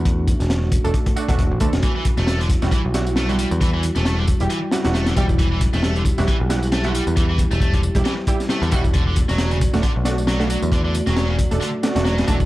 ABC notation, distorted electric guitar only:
X:1
M:4/4
L:1/16
Q:"Swing 16ths" 1/4=135
K:Em
V:1 name="Distorted electric guitar" clef=bass
z16 | E, E, z A, A, D, z2 E, z3 A, D, G, z | E, E, z A, A, D, z2 E, z3 A, D, G, z | E, E, z A, A, D, z2 E, z3 A, D, G, z |
E, E, z A, A, D, z2 E, z3 A, D, G, z | D, D, z F, F, ^C, z2 D, z3 F, C, F, z | D, D, z F, F, ^C, z2 D, z3 F, C, F, z |]